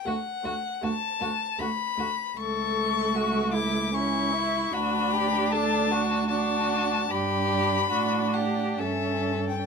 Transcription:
<<
  \new Staff \with { instrumentName = "Violin" } { \time 3/4 \key d \major \tempo 4 = 76 fis''4 a''4 b''4 | cis'''4. d'''8 cis'''4 | b''4 a''4 a''4 | b''4. fis''8 e''8. g''16 | }
  \new Staff \with { instrumentName = "Violin" } { \time 3/4 \key d \major fis'8 fis'8 fis'8 fis'8 fis'8 fis'8 | a'4 fis'8 e'8 e'4 | fis'8 g'8 a'8 fis'8 fis'4 | g'4 fis'8 g'8 a'4 | }
  \new Staff \with { instrumentName = "Viola" } { \time 3/4 \key d \major a8 a8 a8 a8 a8 a8 | a2 cis'8 e'8 | d'2 d'4 | d'4 d'4 cis'4 | }
  \new Staff \with { instrumentName = "Cello" } { \clef bass \time 3/4 \key d \major d,8 d,8 d,8 d,8 d,8 d,8 | cis,2. | d,2. | g,4 a,4 g,4 | }
>>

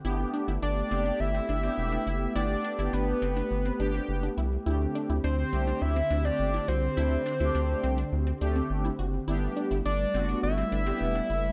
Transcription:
<<
  \new Staff \with { instrumentName = "Analog synth lead" } { \time 4/4 \key g \major \tempo 4 = 104 r4 d''4 e''2 | d''4 b'2~ b'8 r8 | r4 c''4 e''8. d''8. c''8~ | c''2~ c''8 r4. |
r4 d''4 e''2 | }
  \new Staff \with { instrumentName = "Analog polysynth" } { \time 4/4 \key g \major <b d' g'>8. r8. <b d' g'>8. r8 <b d' g'>8. r8 | <b d' g'>8 r16 <b d' g'>4 r8. <b d' g'>8. r8. | <a d' g'>8. r8. <a d' g'>8. r8 <a d' g'>8. r8 | <a d' e'>8 r16 <a d' g'>4 r8. <a d' g'>8. r8. |
<b d' g'>8. r8. <b d' fis'>8. r8 <b d' g'>8. r8 | }
  \new Staff \with { instrumentName = "Synth pluck" } { \time 4/4 \key g \major e'8 d'16 e'16 d'8 c'16 d'8 c'16 d'16 c'8 d'16 e'8 | e'8 d'16 e'16 d'8 c'16 d'8 c'16 d'16 c'8 d'16 e'8 | e'8 d'16 e'16 d'8 c'16 d'8 c'16 d'16 c'8 e'16 fis'8 | e'8 d'16 e'16 d'8 c'16 d'8 c'16 d'16 c'8 e'16 fis'8 |
e'8 d'16 e'16 d'8 c'16 d'8 c'16 d'16 c'8 d'16 e'8 | }
  \new Staff \with { instrumentName = "Analog synth pad" } { \time 4/4 \key g \major << { g'1~ | g'1~ | g'1~ | g'1 |
g1 | } \\ { <a b>1~ | <a b>1 | <d c'>1~ | <d c'>1 |
<a b>1 | } >> }
  \new Staff \with { instrumentName = "Analog synth bass" } { \clef bass \time 4/4 \key g \major g,,8 r16 g,,16 g,,8 fis,,8 g,,8 g,,8 e,,8 fis,,8 | g,,8 r16 g,,16 g,,8 fis,,8 g,,8 g,,8 fis,,8 c,8 | d,8 r16 d,16 d,8 c,8 d,8 d,8 g,,8 c,8 | d,8 r16 d,16 d,8 c,8 d,8 d,8 g,,8 fis,,8 |
g,,8 r16 g,,16 g,,8 fis,,8 g,,8 g,,8 e,,8 fis,,8 | }
>>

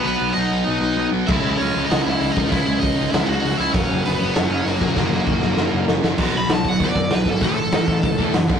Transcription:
<<
  \new Staff \with { instrumentName = "Overdriven electric guitar" } { \time 4/4 \key fis \mixolydian \tempo 4 = 195 <b b'>4 <dis' dis''>2~ <dis' dis''>8 r8 | <e' e''>4 <cis' cis''>4 <dis' dis''>8 <e' e''>4 <dis' dis''>8 | <e' e''>4 <dis' dis''>4 <e' e''>8 <fis' fis''>4 <e' e''>8 | <cis' cis''>4 <b b'>4 <cis' cis''>4 <ais ais'>8 <ais ais'>8~ |
<ais ais'>2. r4 | \key a \lydian r8 b''8 a''8 fis''8 d''4 b'8 a'8 | a'2. r4 | }
  \new Staff \with { instrumentName = "Distorted electric guitar" } { \clef bass \time 4/4 \key fis \mixolydian <b, fis b>2.~ <b, fis b>8 <b, fis b>8 | <cis gis cis'>2.~ <cis gis cis'>8 <cis gis cis'>8 | <cis gis cis'>2.~ <cis gis cis'>8 <cis gis cis'>8 | <fis, cis fis>2.~ <fis, cis fis>8 <fis, cis fis>8 |
<fis, cis fis>2.~ <fis, cis fis>8 <fis, cis fis>8 | \key a \lydian <b, fis b>8 <b, fis>8 <b, fis>8 <b, fis>8 <b, fis b>8 <b, fis>8 <b, fis>8 <b, fis>8 | <a, e a>8 <a, e>8 <a, e>8 <a, e>8 <a, e>8 <a, e a>8 <a, e>8 <g, d g>8 | }
  \new Staff \with { instrumentName = "Distorted electric guitar" } { \clef bass \time 4/4 \key fis \mixolydian <b, fis b>1 | <cis gis cis'>1 | <cis gis cis'>1 | <fis, cis fis>1 |
<fis, cis fis>1 | \key a \lydian <b, fis b>8 <b, fis>8 <b, fis>8 <b, fis>8 <b, fis b>8 <b, fis>8 <b, fis>8 <b, fis>8 | <a, e a>8 <a, e>8 <a, e>8 <a, e>8 <a, e>8 <a, e a>8 <a, e>8 <g, d g>8 | }
  \new Staff \with { instrumentName = "Picked electric bass" } { \clef bass \time 4/4 \key fis \mixolydian b,,8 b,,8 b,,8 b,,8 b,,8 b,,8 b,,8 b,,8 | cis,8 cis,8 cis,8 cis,8 cis,8 cis,8 cis,8 cis,8 | cis,8 cis,8 cis,8 cis,8 cis,8 cis,8 cis,8 cis,8 | fis,,8 fis,,8 fis,,8 fis,,8 fis,,8 fis,,8 fis,,8 fis,,8 |
fis,,8 fis,,8 fis,,8 fis,,8 fis,,8 fis,,8 fis,,8 fis,,8 | \key a \lydian b,,4 b,,4 dis,8 fis,8 b,,8 gis,,8 | a,,4 a,,4 cis,8 e,8 fis,,8 g,,8 | }
  \new DrumStaff \with { instrumentName = "Drums" } \drummode { \time 4/4 r4 r4 r4 r4 | <cymc bd>4 hho4 <hho sn>4 hho8 bd8 | <hho bd>4 <hho bd>4 <hho sn>4 hho4 | <hho bd>4 hho4 <hho sn>4 hho8 bd8 |
<bd sn>8 sn8 bd8 sn8 sn4 sn8 sn8 | <cymc bd>4 <hho sn>8 bd8 <hho bd>8 bd8 <hho sn>8 bd8 | <hho bd>4 <hho sn>8 bd8 <hho bd>8 bd8 <hho sn>8 bd8 | }
>>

